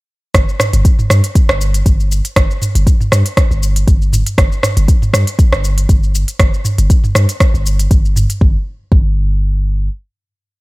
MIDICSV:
0, 0, Header, 1, 3, 480
1, 0, Start_track
1, 0, Tempo, 504202
1, 328, Time_signature, 4, 2, 24, 8
1, 10093, End_track
2, 0, Start_track
2, 0, Title_t, "808-style bass"
2, 0, Program_c, 0, 38
2, 328, Note_on_c, 0, 31, 98
2, 434, Note_off_c, 0, 31, 0
2, 699, Note_on_c, 0, 31, 90
2, 788, Note_off_c, 0, 31, 0
2, 1048, Note_on_c, 0, 43, 91
2, 1154, Note_off_c, 0, 43, 0
2, 1419, Note_on_c, 0, 31, 97
2, 1735, Note_off_c, 0, 31, 0
2, 1769, Note_on_c, 0, 31, 99
2, 2100, Note_off_c, 0, 31, 0
2, 2250, Note_on_c, 0, 31, 101
2, 2355, Note_off_c, 0, 31, 0
2, 2620, Note_on_c, 0, 31, 91
2, 2709, Note_off_c, 0, 31, 0
2, 2970, Note_on_c, 0, 43, 93
2, 3075, Note_off_c, 0, 43, 0
2, 3340, Note_on_c, 0, 31, 99
2, 3656, Note_off_c, 0, 31, 0
2, 3690, Note_on_c, 0, 31, 94
2, 4020, Note_off_c, 0, 31, 0
2, 4169, Note_on_c, 0, 31, 97
2, 4275, Note_off_c, 0, 31, 0
2, 4540, Note_on_c, 0, 31, 91
2, 4628, Note_off_c, 0, 31, 0
2, 4888, Note_on_c, 0, 43, 93
2, 4994, Note_off_c, 0, 43, 0
2, 5258, Note_on_c, 0, 31, 98
2, 5575, Note_off_c, 0, 31, 0
2, 5609, Note_on_c, 0, 31, 95
2, 5940, Note_off_c, 0, 31, 0
2, 6088, Note_on_c, 0, 31, 98
2, 6194, Note_off_c, 0, 31, 0
2, 6458, Note_on_c, 0, 31, 90
2, 6548, Note_off_c, 0, 31, 0
2, 6808, Note_on_c, 0, 43, 92
2, 6914, Note_off_c, 0, 43, 0
2, 7179, Note_on_c, 0, 31, 98
2, 7495, Note_off_c, 0, 31, 0
2, 7529, Note_on_c, 0, 31, 92
2, 7860, Note_off_c, 0, 31, 0
2, 8009, Note_on_c, 0, 31, 100
2, 8150, Note_off_c, 0, 31, 0
2, 8489, Note_on_c, 0, 31, 104
2, 9410, Note_off_c, 0, 31, 0
2, 10093, End_track
3, 0, Start_track
3, 0, Title_t, "Drums"
3, 328, Note_on_c, 9, 36, 115
3, 329, Note_on_c, 9, 37, 95
3, 329, Note_on_c, 9, 42, 47
3, 334, Note_on_c, 9, 82, 51
3, 423, Note_off_c, 9, 36, 0
3, 424, Note_off_c, 9, 37, 0
3, 424, Note_off_c, 9, 42, 0
3, 429, Note_off_c, 9, 82, 0
3, 464, Note_on_c, 9, 82, 26
3, 560, Note_off_c, 9, 82, 0
3, 568, Note_on_c, 9, 37, 92
3, 568, Note_on_c, 9, 45, 85
3, 574, Note_on_c, 9, 82, 94
3, 663, Note_off_c, 9, 37, 0
3, 663, Note_off_c, 9, 45, 0
3, 669, Note_off_c, 9, 82, 0
3, 699, Note_on_c, 9, 42, 58
3, 705, Note_on_c, 9, 82, 40
3, 794, Note_off_c, 9, 42, 0
3, 800, Note_off_c, 9, 82, 0
3, 809, Note_on_c, 9, 36, 109
3, 809, Note_on_c, 9, 42, 49
3, 815, Note_on_c, 9, 82, 54
3, 904, Note_off_c, 9, 36, 0
3, 904, Note_off_c, 9, 42, 0
3, 910, Note_off_c, 9, 82, 0
3, 940, Note_on_c, 9, 45, 85
3, 946, Note_on_c, 9, 82, 26
3, 1035, Note_off_c, 9, 45, 0
3, 1041, Note_off_c, 9, 82, 0
3, 1048, Note_on_c, 9, 37, 88
3, 1054, Note_on_c, 9, 82, 94
3, 1144, Note_off_c, 9, 37, 0
3, 1149, Note_off_c, 9, 82, 0
3, 1179, Note_on_c, 9, 42, 57
3, 1185, Note_on_c, 9, 82, 39
3, 1274, Note_off_c, 9, 42, 0
3, 1280, Note_off_c, 9, 82, 0
3, 1289, Note_on_c, 9, 36, 117
3, 1289, Note_on_c, 9, 42, 47
3, 1295, Note_on_c, 9, 82, 52
3, 1384, Note_off_c, 9, 36, 0
3, 1384, Note_off_c, 9, 42, 0
3, 1390, Note_off_c, 9, 82, 0
3, 1420, Note_on_c, 9, 37, 104
3, 1426, Note_on_c, 9, 82, 28
3, 1515, Note_off_c, 9, 37, 0
3, 1521, Note_off_c, 9, 82, 0
3, 1535, Note_on_c, 9, 82, 90
3, 1630, Note_off_c, 9, 82, 0
3, 1660, Note_on_c, 9, 42, 60
3, 1666, Note_on_c, 9, 82, 42
3, 1755, Note_off_c, 9, 42, 0
3, 1761, Note_off_c, 9, 82, 0
3, 1769, Note_on_c, 9, 36, 102
3, 1770, Note_on_c, 9, 42, 46
3, 1775, Note_on_c, 9, 82, 53
3, 1864, Note_off_c, 9, 36, 0
3, 1865, Note_off_c, 9, 42, 0
3, 1870, Note_off_c, 9, 82, 0
3, 1906, Note_on_c, 9, 82, 27
3, 2001, Note_off_c, 9, 82, 0
3, 2015, Note_on_c, 9, 82, 94
3, 2110, Note_off_c, 9, 82, 0
3, 2141, Note_on_c, 9, 42, 57
3, 2147, Note_on_c, 9, 82, 41
3, 2236, Note_off_c, 9, 42, 0
3, 2242, Note_off_c, 9, 82, 0
3, 2249, Note_on_c, 9, 36, 119
3, 2250, Note_on_c, 9, 37, 98
3, 2250, Note_on_c, 9, 42, 45
3, 2255, Note_on_c, 9, 82, 56
3, 2345, Note_off_c, 9, 36, 0
3, 2345, Note_off_c, 9, 37, 0
3, 2345, Note_off_c, 9, 42, 0
3, 2351, Note_off_c, 9, 82, 0
3, 2387, Note_on_c, 9, 82, 28
3, 2482, Note_off_c, 9, 82, 0
3, 2491, Note_on_c, 9, 45, 77
3, 2497, Note_on_c, 9, 82, 96
3, 2586, Note_off_c, 9, 45, 0
3, 2592, Note_off_c, 9, 82, 0
3, 2622, Note_on_c, 9, 42, 57
3, 2628, Note_on_c, 9, 82, 42
3, 2717, Note_off_c, 9, 42, 0
3, 2723, Note_off_c, 9, 82, 0
3, 2729, Note_on_c, 9, 36, 107
3, 2731, Note_on_c, 9, 42, 49
3, 2737, Note_on_c, 9, 82, 58
3, 2825, Note_off_c, 9, 36, 0
3, 2827, Note_off_c, 9, 42, 0
3, 2832, Note_off_c, 9, 82, 0
3, 2861, Note_on_c, 9, 45, 80
3, 2867, Note_on_c, 9, 82, 29
3, 2956, Note_off_c, 9, 45, 0
3, 2962, Note_off_c, 9, 82, 0
3, 2970, Note_on_c, 9, 37, 89
3, 2975, Note_on_c, 9, 82, 97
3, 3065, Note_off_c, 9, 37, 0
3, 3070, Note_off_c, 9, 82, 0
3, 3100, Note_on_c, 9, 42, 59
3, 3106, Note_on_c, 9, 82, 42
3, 3196, Note_off_c, 9, 42, 0
3, 3201, Note_off_c, 9, 82, 0
3, 3209, Note_on_c, 9, 36, 115
3, 3210, Note_on_c, 9, 37, 88
3, 3210, Note_on_c, 9, 42, 46
3, 3215, Note_on_c, 9, 82, 57
3, 3305, Note_off_c, 9, 36, 0
3, 3305, Note_off_c, 9, 37, 0
3, 3305, Note_off_c, 9, 42, 0
3, 3311, Note_off_c, 9, 82, 0
3, 3346, Note_on_c, 9, 82, 28
3, 3441, Note_off_c, 9, 82, 0
3, 3455, Note_on_c, 9, 82, 95
3, 3550, Note_off_c, 9, 82, 0
3, 3581, Note_on_c, 9, 42, 58
3, 3587, Note_on_c, 9, 82, 43
3, 3676, Note_off_c, 9, 42, 0
3, 3682, Note_off_c, 9, 82, 0
3, 3689, Note_on_c, 9, 36, 116
3, 3690, Note_on_c, 9, 42, 47
3, 3696, Note_on_c, 9, 82, 52
3, 3784, Note_off_c, 9, 36, 0
3, 3785, Note_off_c, 9, 42, 0
3, 3791, Note_off_c, 9, 82, 0
3, 3827, Note_on_c, 9, 82, 28
3, 3922, Note_off_c, 9, 82, 0
3, 3929, Note_on_c, 9, 45, 85
3, 3935, Note_on_c, 9, 82, 100
3, 4024, Note_off_c, 9, 45, 0
3, 4030, Note_off_c, 9, 82, 0
3, 4060, Note_on_c, 9, 42, 58
3, 4066, Note_on_c, 9, 82, 43
3, 4155, Note_off_c, 9, 42, 0
3, 4161, Note_off_c, 9, 82, 0
3, 4169, Note_on_c, 9, 36, 125
3, 4171, Note_on_c, 9, 37, 95
3, 4171, Note_on_c, 9, 42, 45
3, 4176, Note_on_c, 9, 82, 57
3, 4264, Note_off_c, 9, 36, 0
3, 4266, Note_off_c, 9, 37, 0
3, 4266, Note_off_c, 9, 42, 0
3, 4271, Note_off_c, 9, 82, 0
3, 4306, Note_on_c, 9, 82, 30
3, 4401, Note_off_c, 9, 82, 0
3, 4410, Note_on_c, 9, 37, 86
3, 4410, Note_on_c, 9, 45, 81
3, 4415, Note_on_c, 9, 82, 94
3, 4505, Note_off_c, 9, 37, 0
3, 4505, Note_off_c, 9, 45, 0
3, 4510, Note_off_c, 9, 82, 0
3, 4540, Note_on_c, 9, 42, 55
3, 4546, Note_on_c, 9, 82, 42
3, 4636, Note_off_c, 9, 42, 0
3, 4641, Note_off_c, 9, 82, 0
3, 4649, Note_on_c, 9, 36, 110
3, 4649, Note_on_c, 9, 42, 48
3, 4655, Note_on_c, 9, 82, 58
3, 4744, Note_off_c, 9, 36, 0
3, 4744, Note_off_c, 9, 42, 0
3, 4750, Note_off_c, 9, 82, 0
3, 4781, Note_on_c, 9, 45, 84
3, 4786, Note_on_c, 9, 82, 29
3, 4876, Note_off_c, 9, 45, 0
3, 4881, Note_off_c, 9, 82, 0
3, 4890, Note_on_c, 9, 37, 89
3, 4895, Note_on_c, 9, 82, 102
3, 4985, Note_off_c, 9, 37, 0
3, 4991, Note_off_c, 9, 82, 0
3, 5020, Note_on_c, 9, 42, 56
3, 5026, Note_on_c, 9, 82, 44
3, 5116, Note_off_c, 9, 42, 0
3, 5121, Note_off_c, 9, 82, 0
3, 5129, Note_on_c, 9, 36, 127
3, 5129, Note_on_c, 9, 42, 44
3, 5135, Note_on_c, 9, 82, 53
3, 5224, Note_off_c, 9, 36, 0
3, 5224, Note_off_c, 9, 42, 0
3, 5230, Note_off_c, 9, 82, 0
3, 5260, Note_on_c, 9, 37, 94
3, 5266, Note_on_c, 9, 82, 28
3, 5355, Note_off_c, 9, 37, 0
3, 5361, Note_off_c, 9, 82, 0
3, 5374, Note_on_c, 9, 82, 96
3, 5469, Note_off_c, 9, 82, 0
3, 5500, Note_on_c, 9, 42, 59
3, 5505, Note_on_c, 9, 82, 43
3, 5595, Note_off_c, 9, 42, 0
3, 5601, Note_off_c, 9, 82, 0
3, 5609, Note_on_c, 9, 36, 115
3, 5609, Note_on_c, 9, 42, 43
3, 5615, Note_on_c, 9, 82, 54
3, 5704, Note_off_c, 9, 36, 0
3, 5704, Note_off_c, 9, 42, 0
3, 5710, Note_off_c, 9, 82, 0
3, 5745, Note_on_c, 9, 82, 28
3, 5840, Note_off_c, 9, 82, 0
3, 5854, Note_on_c, 9, 82, 102
3, 5949, Note_off_c, 9, 82, 0
3, 5979, Note_on_c, 9, 42, 53
3, 5985, Note_on_c, 9, 82, 42
3, 6074, Note_off_c, 9, 42, 0
3, 6080, Note_off_c, 9, 82, 0
3, 6088, Note_on_c, 9, 36, 127
3, 6088, Note_on_c, 9, 37, 89
3, 6088, Note_on_c, 9, 42, 43
3, 6094, Note_on_c, 9, 82, 54
3, 6183, Note_off_c, 9, 37, 0
3, 6183, Note_off_c, 9, 42, 0
3, 6184, Note_off_c, 9, 36, 0
3, 6189, Note_off_c, 9, 82, 0
3, 6224, Note_on_c, 9, 82, 30
3, 6320, Note_off_c, 9, 82, 0
3, 6327, Note_on_c, 9, 45, 83
3, 6333, Note_on_c, 9, 82, 97
3, 6423, Note_off_c, 9, 45, 0
3, 6428, Note_off_c, 9, 82, 0
3, 6459, Note_on_c, 9, 42, 56
3, 6464, Note_on_c, 9, 82, 42
3, 6554, Note_off_c, 9, 42, 0
3, 6560, Note_off_c, 9, 82, 0
3, 6569, Note_on_c, 9, 36, 112
3, 6569, Note_on_c, 9, 42, 45
3, 6574, Note_on_c, 9, 82, 56
3, 6664, Note_off_c, 9, 36, 0
3, 6664, Note_off_c, 9, 42, 0
3, 6670, Note_off_c, 9, 82, 0
3, 6699, Note_on_c, 9, 45, 83
3, 6704, Note_on_c, 9, 82, 28
3, 6794, Note_off_c, 9, 45, 0
3, 6800, Note_off_c, 9, 82, 0
3, 6808, Note_on_c, 9, 37, 83
3, 6814, Note_on_c, 9, 82, 104
3, 6904, Note_off_c, 9, 37, 0
3, 6909, Note_off_c, 9, 82, 0
3, 6940, Note_on_c, 9, 42, 54
3, 6945, Note_on_c, 9, 82, 41
3, 7035, Note_off_c, 9, 42, 0
3, 7041, Note_off_c, 9, 82, 0
3, 7049, Note_on_c, 9, 36, 122
3, 7049, Note_on_c, 9, 37, 85
3, 7049, Note_on_c, 9, 42, 42
3, 7054, Note_on_c, 9, 82, 55
3, 7144, Note_off_c, 9, 36, 0
3, 7144, Note_off_c, 9, 37, 0
3, 7144, Note_off_c, 9, 42, 0
3, 7149, Note_off_c, 9, 82, 0
3, 7185, Note_on_c, 9, 82, 28
3, 7280, Note_off_c, 9, 82, 0
3, 7295, Note_on_c, 9, 82, 95
3, 7390, Note_off_c, 9, 82, 0
3, 7421, Note_on_c, 9, 42, 55
3, 7426, Note_on_c, 9, 82, 44
3, 7516, Note_off_c, 9, 42, 0
3, 7521, Note_off_c, 9, 82, 0
3, 7529, Note_on_c, 9, 36, 113
3, 7529, Note_on_c, 9, 42, 45
3, 7535, Note_on_c, 9, 82, 52
3, 7624, Note_off_c, 9, 36, 0
3, 7624, Note_off_c, 9, 42, 0
3, 7630, Note_off_c, 9, 82, 0
3, 7666, Note_on_c, 9, 82, 27
3, 7761, Note_off_c, 9, 82, 0
3, 7769, Note_on_c, 9, 45, 82
3, 7775, Note_on_c, 9, 82, 102
3, 7865, Note_off_c, 9, 45, 0
3, 7870, Note_off_c, 9, 82, 0
3, 7900, Note_on_c, 9, 42, 55
3, 7905, Note_on_c, 9, 82, 42
3, 7995, Note_off_c, 9, 42, 0
3, 8001, Note_off_c, 9, 82, 0
3, 8009, Note_on_c, 9, 36, 113
3, 8104, Note_off_c, 9, 36, 0
3, 8489, Note_on_c, 9, 36, 117
3, 8584, Note_off_c, 9, 36, 0
3, 10093, End_track
0, 0, End_of_file